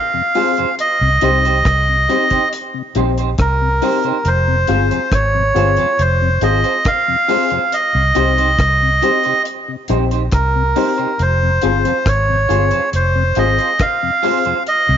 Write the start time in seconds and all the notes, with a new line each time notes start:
Already playing: F5
0.14 F2 C3
0.35 G#3 C4 F4 G#4 C5, open hi-hat
0.57 F2 C3 F4 G#4 C5, closed hi-hat
0.79 D#5, closed hi-hat
1.01 C2 C3
1.21 C2 G3 C4 D#4 G4 C5, closed hi-hat
1.44 C3 D#4 G4 C5, closed hi-hat
1.65 C2, kick, cross-stick, closed hi-hat
1.89 C3
2.09 G3 C4 D#4 G4 C5, closed hi-hat
2.30 C3 D#4 G4 C5, kick, closed hi-hat
2.53 closed hi-hat
2.74 C3
2.95 A#1 G3 C4 D#4 G4 C5, closed hi-hat
3.18 D#4 G4 C5, closed hi-hat
3.38 C2 A#4, kick, cross-stick, closed hi-hat
3.61 C3
3.82 G3 C4 D#4 G4 C5, open hi-hat
4.04 C3 D#4 G4 C5, closed hi-hat
4.25 F1 C5, closed hi-hat
4.48 F2 C3
4.67 G1 G#3 C4 F4 G#4 C5, closed hi-hat
4.91 F2 C3 F4 G#4 C5, closed hi-hat
5.12 G#1 C#5, kick, cross-stick, closed hi-hat
5.34 F2 C3
5.54 G1 G#3 C4 F4 G#4 C5, closed hi-hat
5.77 F2 C3 F4 G#4 C5, closed hi-hat
5.99 F1 C5, closed hi-hat
6.22 F2 C3
6.41 G#1 G#3 C4 F4 G#4 C5 D#5, closed hi-hat
6.63 F4 G#4 C5, closed hi-hat
6.85 F5, kick, cross-stick, closed hi-hat
7.08 F2 C3
7.28 G#3 C4 F4 G#4 C5, open hi-hat
7.50 F2 C3 F4 G#4 C5, closed hi-hat
7.72 D#5, closed hi-hat
7.94 C2 C3
8.15 C2 G3 C4 D#4 G4 C5, closed hi-hat
8.38 C3 D#4 G4 C5, closed hi-hat
8.59 C2, kick, cross-stick, closed hi-hat
8.83 C3
9.02 G3 C4 D#4 G4 C5, closed hi-hat
9.24 C3 D#4 G4 C5, closed hi-hat
9.45 closed hi-hat
9.68 C3
9.88 A#1 G3 C4 D#4 G4 C5, closed hi-hat
10.11 D#4 G4 C5, closed hi-hat
10.32 C2 A#4, kick, cross-stick, closed hi-hat
10.55 C3
10.76 G3 C4 D#4 G4 C5, open hi-hat
10.98 C3 D#4 G4 C5, closed hi-hat
11.19 F1 C5, closed hi-hat
11.43 F2 C3
11.61 G1 G#3 C4 F4 G#4 C5, closed hi-hat
11.85 F2 C3 F4 G#4 C5, closed hi-hat
12.06 G#1 C#5, kick, cross-stick, closed hi-hat
12.29 F2 C3
12.49 G1 G#3 C4 F4 G#4 C5, closed hi-hat
12.71 F2 C3 F4 G#4 C5, closed hi-hat
12.93 F1 C5, closed hi-hat
13.16 F2 C3
13.35 G#1 G#3 C4 F4 G#4 C5 D#5, closed hi-hat
13.58 F4 G#4 C5, closed hi-hat
13.79 F5, kick, cross-stick, closed hi-hat
14.03 F2 C3
14.23 G#3 C4 F4 G#4 C5, open hi-hat
14.45 F2 C3 F4 G#4 C5, closed hi-hat
14.66 D#5, closed hi-hat
14.88 C2 C3